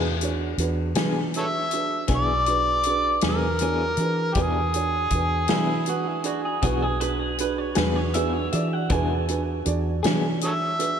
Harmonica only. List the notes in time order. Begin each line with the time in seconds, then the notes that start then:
1.38 A4 C#5 E5
2.16 D5
3.29 A#4
4.34 G4
4.42 G#4
10.45 A4 C#5 E5